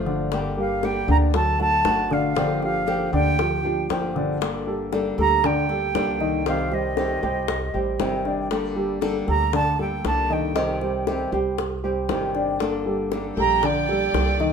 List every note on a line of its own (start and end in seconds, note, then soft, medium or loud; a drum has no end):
0.00 1.02 G1 medium
0.00 0.31 F3 medium
0.00 0.31 A3 medium
0.00 0.31 D4 medium
0.00 0.32 F4 medium
0.06 0.48 D3 medium
0.06 0.48 D4 medium
0.06 0.48 D5 medium
0.06 high bongo soft
0.32 0.82 D3 medium
0.32 0.82 G3 medium
0.32 0.82 A#3 medium
0.32 0.82 D4 medium
0.32 0.83 G4 medium
0.32 high bongo medium
0.57 0.99 G3 medium
0.57 0.99 G4 medium
0.57 1.00 A#4 medium
0.57 0.86 F5 medium
0.83 1.07 D3 medium
0.83 1.08 G3 medium
0.83 1.08 A#3 medium
0.83 1.08 D4 medium
0.83 1.07 G4 medium
0.83 1.09 G5 loud
0.83 high bongo soft
1.08 1.81 D2 medium
1.08 1.30 D3 medium
1.08 1.34 A#3 soft
1.08 1.30 D4 medium
1.08 1.33 D4 soft
1.08 1.33 G4 medium
1.08 1.30 D5 medium
1.08 1.17 A#5 loud
1.08 high bongo soft
1.34 1.55 F#3 medium
1.34 1.55 F#4 medium
1.34 1.55 A4 medium
1.34 1.59 A5 loud
1.34 muted nylon-string guitar stroke soft
1.34 high bongo medium
1.59 2.02 F#3 medium
1.59 1.84 A3 soft
1.59 1.84 D4 soft
1.59 1.84 F#4 soft
1.59 2.02 F#4 medium
1.59 2.02 A4 medium
1.59 2.14 A5 loud
1.59 high bongo soft
1.85 3.06 G1 medium
1.85 2.34 D3 medium
1.85 2.36 A3 medium
1.85 2.35 D4 medium
1.85 2.36 F#4 medium
1.85 high bongo medium
1.85 low bongo medium
2.11 2.32 D3 medium
2.11 2.32 D4 medium
2.11 2.32 D5 medium
2.11 2.63 F5 medium
2.11 high bongo soft
2.35 2.85 D3 medium
2.35 2.58 D3 medium
2.35 2.86 F3 medium
2.35 2.87 A#3 medium
2.35 2.87 D4 medium
2.35 2.58 D4 medium
2.35 2.87 G4 medium
2.35 2.58 D5 medium
2.35 high bongo medium
2.62 3.04 F3 medium
2.62 3.04 F4 medium
2.62 3.04 G4 medium
2.62 3.11 F5 medium
2.62 high bongo soft
2.87 3.12 D3 medium
2.87 3.12 F3 medium
2.87 3.12 A#3 medium
2.87 3.12 D4 medium
2.87 3.11 G4 medium
2.87 high bongo soft
3.13 3.86 D2 medium
3.13 3.34 D3 medium
3.13 3.37 A#3 soft
3.13 3.37 D4 soft
3.13 3.34 D4 medium
3.13 3.37 G4 soft
3.13 3.34 D5 medium
3.13 3.87 G5 loud
3.13 high bongo soft
3.38 3.60 F3 medium
3.38 3.60 F4 medium
3.38 3.60 G4 medium
3.38 muted nylon-string guitar stroke medium
3.38 high bongo medium
3.63 4.06 F3 medium
3.63 3.89 A#3 soft
3.63 3.89 D4 soft
3.63 4.07 F4 medium
3.63 3.88 G4 soft
3.63 4.07 G4 medium
3.89 5.11 G1 medium
3.89 4.40 D3 medium
3.89 4.40 F3 medium
3.89 4.40 A#3 medium
3.89 4.41 D4 medium
3.89 4.41 G4 medium
3.89 high bongo medium
3.89 low bongo medium
4.16 4.37 D3 medium
4.16 4.37 D4 medium
4.16 4.37 D5 medium
4.16 high bongo soft
4.41 4.91 D3 medium
4.41 4.91 G3 medium
4.41 4.92 A#3 medium
4.41 4.92 D4 medium
4.41 4.92 A4 medium
4.41 high bongo medium
4.67 5.09 G3 medium
4.67 5.09 G4 medium
4.67 5.09 A4 medium
4.92 5.17 D3 medium
4.92 5.17 G3 medium
4.92 5.17 A#3 medium
4.92 5.18 D4 medium
4.92 5.17 A4 medium
4.92 high bongo medium
5.18 5.91 D2 medium
5.18 5.39 G3 medium
5.18 5.43 A#3 soft
5.18 5.43 D4 soft
5.18 5.39 G4 medium
5.18 5.43 A4 soft
5.18 5.40 A4 medium
5.18 5.47 A#5 loud
5.18 high bongo soft
5.44 5.65 D3 medium
5.44 5.65 D4 medium
5.44 5.65 D5 medium
5.44 6.47 G5 loud
5.44 muted nylon-string guitar stroke soft
5.44 high bongo medium
5.69 6.11 G3 medium
5.69 5.95 A#3 soft
5.69 5.94 D4 soft
5.69 6.11 G4 medium
5.69 5.94 A4 soft
5.69 6.12 A4 medium
5.69 high bongo soft
5.95 7.16 C2 medium
5.95 6.45 D3 medium
5.95 6.45 G3 medium
5.95 6.46 A#3 medium
5.95 6.46 D4 medium
5.95 6.46 A4 medium
5.95 high bongo medium
5.95 low bongo medium
6.20 6.42 D#3 medium
6.20 6.42 D#4 medium
6.20 6.42 D#5 medium
6.20 high bongo soft
6.46 6.96 C3 medium
6.46 6.67 D#3 medium
6.46 6.96 D#3 medium
6.46 6.97 G3 medium
6.46 6.97 C4 medium
6.46 6.67 D#4 medium
6.46 6.97 G4 medium
6.46 6.67 D#5 medium
6.46 6.75 F5 medium
6.46 high bongo medium
6.72 7.14 G3 medium
6.72 7.14 G4 medium
6.72 7.14 C5 medium
6.72 8.26 D#5 medium
6.72 high bongo soft
6.97 7.22 C3 medium
6.97 7.22 D#3 medium
6.97 7.22 G3 medium
6.97 7.22 C4 medium
6.97 7.21 G4 medium
6.97 high bongo medium
7.22 7.71 C2 medium
7.22 7.65 G3 medium
7.22 7.47 G3 soft
7.22 7.48 C4 soft
7.22 7.47 G4 soft
7.22 7.65 G4 medium
7.22 7.65 C5 medium
7.22 high bongo soft
7.48 muted nylon-string guitar stroke soft
7.48 high bongo medium
7.74 7.98 A1 medium
7.74 8.16 G3 medium
7.74 7.99 G3 soft
7.74 7.99 C4 soft
7.74 7.98 G4 soft
7.74 8.16 G4 medium
7.74 8.16 C5 medium
7.99 9.21 G1 medium
7.99 8.50 C3 medium
7.99 8.50 D#3 medium
7.99 8.50 G3 medium
7.99 8.50 C4 medium
7.99 8.51 G4 medium
7.99 high bongo medium
7.99 low bongo medium
8.25 8.67 D4 medium
8.25 8.67 D5 medium
8.25 high bongo soft
8.51 9.00 D3 medium
8.51 9.01 G3 medium
8.51 9.01 A#3 medium
8.51 9.01 D4 medium
8.51 9.02 A4 medium
8.51 high bongo medium
8.76 9.18 G3 medium
8.76 9.18 G4 medium
8.76 9.19 A4 medium
9.01 9.26 D3 medium
9.01 9.26 G3 medium
9.01 9.27 A#3 medium
9.01 9.27 D4 medium
9.01 9.26 A4 medium
9.01 high bongo medium
9.27 10.01 D2 medium
9.27 9.49 G3 medium
9.27 9.53 A#3 soft
9.27 9.53 D4 soft
9.27 9.49 G4 medium
9.27 9.52 A4 medium
9.27 9.49 A4 medium
9.27 9.52 A#5 loud
9.27 high bongo soft
9.53 9.74 D3 medium
9.53 9.74 D4 medium
9.53 9.75 D5 medium
9.53 9.78 A5 loud
9.53 muted nylon-string guitar stroke medium
9.53 high bongo medium
9.79 10.21 G3 medium
9.79 10.04 A#3 soft
9.79 10.04 D4 soft
9.79 10.21 G4 medium
9.79 10.03 A4 soft
9.79 10.21 A4 medium
9.79 10.04 G5 medium
9.79 high bongo soft
10.04 11.26 C2 medium
10.04 10.55 D3 medium
10.04 10.55 G3 medium
10.04 10.55 A#3 medium
10.04 10.55 D4 medium
10.04 10.55 A4 medium
10.04 10.34 A5 loud
10.04 high bongo medium
10.04 low bongo medium
10.30 10.51 D#3 medium
10.30 10.51 D#4 medium
10.30 10.51 D#5 medium
10.30 11.08 G5 medium
10.30 high bongo soft
10.55 11.06 C3 medium
10.55 10.76 D#3 medium
10.55 11.06 D#3 medium
10.55 11.06 G3 medium
10.55 11.06 C4 medium
10.55 10.76 D#4 medium
10.55 11.06 G4 medium
10.55 10.77 D#5 medium
10.55 high bongo medium
10.81 11.23 G3 medium
10.81 11.23 G4 medium
10.81 11.24 C5 medium
10.81 high bongo soft
11.07 11.31 C3 medium
11.07 11.32 D#3 medium
11.07 11.32 G3 medium
11.07 11.32 C4 medium
11.07 11.31 G4 medium
11.07 high bongo medium
11.32 12.05 C2 medium
11.32 11.74 G3 medium
11.32 11.58 G3 soft
11.32 11.58 C4 soft
11.32 11.75 G4 medium
11.32 11.57 G4 medium
11.32 11.75 C5 medium
11.32 high bongo soft
11.58 muted nylon-string guitar stroke soft
11.58 high bongo medium
11.83 12.26 G3 medium
11.83 12.09 G3 soft
11.83 12.09 C4 soft
11.83 12.26 G4 medium
11.83 12.08 G4 soft
11.83 12.26 C5 medium
12.09 13.31 G1 medium
12.09 12.59 C3 medium
12.09 12.60 D#3 medium
12.09 12.60 G3 medium
12.09 12.60 C4 medium
12.09 12.60 G4 medium
12.09 high bongo medium
12.09 low bongo medium
12.35 12.77 D4 medium
12.35 12.77 D5 medium
12.35 high bongo soft
12.60 13.10 D3 medium
12.60 13.11 G3 medium
12.60 13.11 A#3 medium
12.60 13.11 D4 medium
12.60 13.11 A4 medium
12.60 high bongo medium
12.86 13.28 G3 medium
12.86 13.28 G4 medium
12.86 13.28 A4 medium
13.11 13.36 D3 medium
13.11 13.36 G3 medium
13.11 13.37 A#3 medium
13.11 13.37 D4 medium
13.11 13.36 A4 medium
13.11 high bongo medium
13.37 14.10 A#1 medium
13.37 13.59 G3 medium
13.37 13.62 A#3 soft
13.37 13.62 D4 soft
13.37 13.59 G4 medium
13.37 13.62 A4 soft
13.37 13.59 A4 medium
13.37 13.62 G5 medium
13.37 13.66 A#5 loud
13.37 high bongo soft
13.63 13.84 D3 medium
13.63 13.84 D4 medium
13.63 14.53 D5 medium
13.63 13.84 D5 medium
13.63 14.53 G5 loud
13.63 muted nylon-string guitar stroke medium
13.63 high bongo medium
13.89 14.31 G3 medium
13.89 14.14 A#3 soft
13.89 14.14 D4 soft
13.89 14.31 G4 medium
13.89 14.13 A4 soft
13.89 14.31 A4 medium
13.89 high bongo soft
14.14 14.53 C2 medium
14.14 14.53 D3 medium
14.14 14.53 G3 medium
14.14 14.53 A#3 medium
14.14 14.53 D4 medium
14.14 14.53 A4 medium
14.14 high bongo medium
14.14 low bongo medium
14.40 14.53 D#3 medium
14.40 14.53 D#4 medium
14.40 14.53 D#5 medium
14.40 high bongo soft